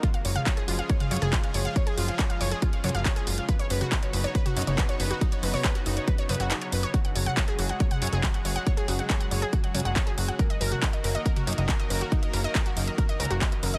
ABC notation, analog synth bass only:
X:1
M:4/4
L:1/16
Q:1/4=139
K:F#
V:1 name="Analog synth bass" clef=bass
z2 F,,, z3 F,,, z3 F,, F,,, z2 F,,, z | z2 F,,, z3 F,,, z3 F,, F,,, z2 F,,, z | z2 F,,, z3 F,,, z3 F,, F,,, z2 F,,, z | z2 F,,, z3 F,,, z3 F,, F,,, z2 F,,, z |
z2 F,,, z3 F,,, z3 F,, F,,, z2 F,,, z | z2 F,,, z3 F,,, z3 F,, F,,, z2 F,,, z | z2 F,,, z3 F,,, z3 F,, F,,, z2 F,,, z | z2 F,,, z3 F,,, z3 C,, F,,, z2 F,,, z |]